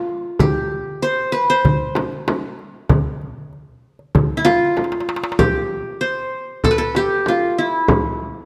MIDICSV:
0, 0, Header, 1, 4, 480
1, 0, Start_track
1, 0, Tempo, 625000
1, 307, Time_signature, 4, 2, 24, 8
1, 6491, End_track
2, 0, Start_track
2, 0, Title_t, "Qanun"
2, 0, Program_c, 0, 107
2, 0, Note_on_c, 0, 65, 80
2, 309, Note_on_c, 0, 67, 83
2, 620, Note_off_c, 0, 65, 0
2, 787, Note_on_c, 0, 72, 85
2, 1015, Note_on_c, 0, 71, 79
2, 1062, Note_off_c, 0, 72, 0
2, 1150, Note_on_c, 0, 72, 74
2, 1196, Note_off_c, 0, 71, 0
2, 1272, Note_off_c, 0, 67, 0
2, 3357, Note_on_c, 0, 64, 67
2, 3415, Note_on_c, 0, 65, 89
2, 3461, Note_off_c, 0, 64, 0
2, 3636, Note_off_c, 0, 72, 0
2, 4139, Note_on_c, 0, 67, 81
2, 4449, Note_off_c, 0, 65, 0
2, 4615, Note_on_c, 0, 72, 77
2, 5102, Note_off_c, 0, 67, 0
2, 5103, Note_on_c, 0, 69, 87
2, 5152, Note_on_c, 0, 71, 68
2, 5198, Note_off_c, 0, 72, 0
2, 5205, Note_off_c, 0, 69, 0
2, 5208, Note_on_c, 0, 69, 81
2, 5348, Note_on_c, 0, 67, 81
2, 5594, Note_on_c, 0, 65, 68
2, 5825, Note_on_c, 0, 64, 66
2, 5871, Note_off_c, 0, 65, 0
2, 5995, Note_off_c, 0, 71, 0
2, 6106, Note_off_c, 0, 69, 0
2, 6311, Note_off_c, 0, 67, 0
2, 6491, Note_off_c, 0, 64, 0
2, 6491, End_track
3, 0, Start_track
3, 0, Title_t, "Darbuka"
3, 68, Note_on_c, 9, 62, 24
3, 144, Note_off_c, 9, 62, 0
3, 306, Note_on_c, 9, 64, 77
3, 383, Note_off_c, 9, 64, 0
3, 550, Note_on_c, 9, 62, 23
3, 627, Note_off_c, 9, 62, 0
3, 1026, Note_on_c, 9, 62, 22
3, 1102, Note_off_c, 9, 62, 0
3, 1268, Note_on_c, 9, 64, 82
3, 1344, Note_off_c, 9, 64, 0
3, 1508, Note_on_c, 9, 63, 67
3, 1585, Note_off_c, 9, 63, 0
3, 1629, Note_on_c, 9, 62, 22
3, 1705, Note_off_c, 9, 62, 0
3, 1749, Note_on_c, 9, 63, 65
3, 1826, Note_off_c, 9, 63, 0
3, 1872, Note_on_c, 9, 62, 23
3, 1949, Note_off_c, 9, 62, 0
3, 1989, Note_on_c, 9, 62, 21
3, 2065, Note_off_c, 9, 62, 0
3, 2226, Note_on_c, 9, 64, 78
3, 2303, Note_off_c, 9, 64, 0
3, 2468, Note_on_c, 9, 62, 23
3, 2545, Note_off_c, 9, 62, 0
3, 2709, Note_on_c, 9, 62, 20
3, 2786, Note_off_c, 9, 62, 0
3, 3065, Note_on_c, 9, 62, 24
3, 3142, Note_off_c, 9, 62, 0
3, 3189, Note_on_c, 9, 64, 81
3, 3266, Note_off_c, 9, 64, 0
3, 3303, Note_on_c, 9, 62, 22
3, 3380, Note_off_c, 9, 62, 0
3, 3422, Note_on_c, 9, 63, 65
3, 3499, Note_off_c, 9, 63, 0
3, 3661, Note_on_c, 9, 63, 50
3, 3719, Note_on_c, 9, 62, 52
3, 3738, Note_off_c, 9, 63, 0
3, 3778, Note_on_c, 9, 63, 58
3, 3795, Note_off_c, 9, 62, 0
3, 3844, Note_on_c, 9, 62, 61
3, 3855, Note_off_c, 9, 63, 0
3, 3907, Note_on_c, 9, 63, 70
3, 3921, Note_off_c, 9, 62, 0
3, 3966, Note_on_c, 9, 62, 78
3, 3984, Note_off_c, 9, 63, 0
3, 4021, Note_on_c, 9, 63, 73
3, 4042, Note_off_c, 9, 62, 0
3, 4085, Note_on_c, 9, 62, 78
3, 4098, Note_off_c, 9, 63, 0
3, 4162, Note_off_c, 9, 62, 0
3, 6491, End_track
4, 0, Start_track
4, 0, Title_t, "Frame drum"
4, 303, Note_on_c, 9, 64, 75
4, 380, Note_off_c, 9, 64, 0
4, 1264, Note_on_c, 9, 64, 65
4, 1341, Note_off_c, 9, 64, 0
4, 1500, Note_on_c, 9, 64, 62
4, 1577, Note_off_c, 9, 64, 0
4, 1750, Note_on_c, 9, 64, 65
4, 1826, Note_off_c, 9, 64, 0
4, 2223, Note_on_c, 9, 64, 77
4, 2300, Note_off_c, 9, 64, 0
4, 3185, Note_on_c, 9, 64, 66
4, 3262, Note_off_c, 9, 64, 0
4, 3426, Note_on_c, 9, 64, 60
4, 3503, Note_off_c, 9, 64, 0
4, 3665, Note_on_c, 9, 64, 59
4, 3742, Note_off_c, 9, 64, 0
4, 4139, Note_on_c, 9, 64, 89
4, 4216, Note_off_c, 9, 64, 0
4, 5097, Note_on_c, 9, 64, 68
4, 5174, Note_off_c, 9, 64, 0
4, 5337, Note_on_c, 9, 64, 58
4, 5413, Note_off_c, 9, 64, 0
4, 5576, Note_on_c, 9, 64, 59
4, 5653, Note_off_c, 9, 64, 0
4, 6055, Note_on_c, 9, 64, 86
4, 6131, Note_off_c, 9, 64, 0
4, 6491, End_track
0, 0, End_of_file